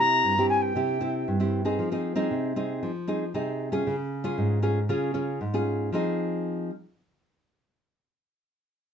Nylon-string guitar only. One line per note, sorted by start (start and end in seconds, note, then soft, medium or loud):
0.00 0.21 C3 medium
0.00 0.33 C4 soft
0.00 0.33 E4 medium
0.00 0.33 G4 medium
0.24 0.73 G2 medium
0.38 0.72 C4 medium
0.38 0.72 E4 medium
0.38 0.73 G4 medium
0.75 1.25 C3 medium
0.75 0.98 C4 medium
0.75 0.98 E4 medium
0.75 0.98 G4 medium
1.01 1.36 C4 medium
1.01 1.36 E4 medium
1.01 1.36 G4 medium
1.28 1.77 G2 medium
1.40 1.62 C4 medium
1.40 1.62 E4 medium
1.40 1.62 G4 medium
1.65 1.91 C4 medium
1.65 1.91 D#4 medium
1.65 1.91 G#4 medium
1.79 2.28 F3 medium
1.92 2.14 C4 medium
1.92 2.14 D#4 medium
1.92 2.14 G#4 medium
2.16 2.52 C4 medium
2.16 2.52 D#4 medium
2.16 2.52 G#4 medium
2.31 2.80 C3 medium
2.56 2.90 C4 medium
2.56 2.90 D#4 medium
2.56 2.90 G#4 medium
2.83 3.32 F3 medium
3.07 3.23 C4 medium
3.07 3.24 D#4 medium
3.07 3.24 G#4 medium
3.34 3.84 C3 medium
3.34 3.69 C4 medium
3.34 3.69 D#4 medium
3.34 3.70 G#4 medium
3.72 3.94 C#4 medium
3.72 3.95 F4 medium
3.72 3.95 G#4 medium
3.87 4.36 C#3 medium
4.24 4.59 C#4 medium
4.24 4.60 F4 medium
4.24 4.60 G#4 medium
4.38 4.87 G#2 medium
4.62 4.78 C#4 medium
4.62 4.79 F4 medium
4.62 4.79 G#4 medium
4.89 5.39 C#3 medium
4.89 5.11 C#4 medium
4.89 5.11 F4 medium
4.89 5.12 G#4 medium
5.14 5.39 C#4 medium
5.14 5.39 F4 medium
5.14 5.39 G#4 medium
5.41 5.90 G#2 medium
5.54 5.89 C#4 medium
5.54 5.89 F4 medium
5.54 5.89 G#4 medium
5.92 6.70 F3 medium
5.92 6.70 C4 medium
5.92 6.70 D#4 medium
5.92 6.70 G#4 medium